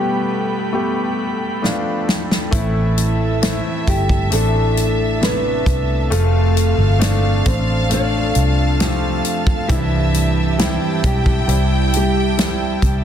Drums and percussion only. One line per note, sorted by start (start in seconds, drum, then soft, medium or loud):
1.64 snare soft
2.09 snare medium
2.32 snare medium
2.53 kick loud
2.53 closed hi-hat medium
2.98 closed hi-hat medium
3.43 snare loud
3.43 closed hi-hat medium
3.88 kick medium
3.88 closed hi-hat medium
4.09 kick medium
4.32 closed hi-hat medium
4.77 closed hi-hat medium
5.23 snare loud
5.23 closed hi-hat medium
5.66 kick medium
5.66 closed hi-hat medium
6.12 closed hi-hat medium
6.57 closed hi-hat medium
7.01 snare loud
7.01 closed hi-hat medium
7.46 kick medium
7.46 closed hi-hat medium
7.91 closed hi-hat medium
8.35 closed hi-hat medium
8.80 snare loud
8.80 closed hi-hat medium
9.25 closed hi-hat medium
9.47 kick medium
9.69 kick loud
9.69 closed hi-hat medium
10.14 closed hi-hat medium
10.59 snare loud
10.59 closed hi-hat medium
11.04 kick medium
11.04 closed hi-hat medium
11.26 kick medium
11.49 closed hi-hat medium
11.93 closed hi-hat medium
12.39 snare loud
12.39 closed hi-hat medium
12.82 kick medium
12.82 closed hi-hat medium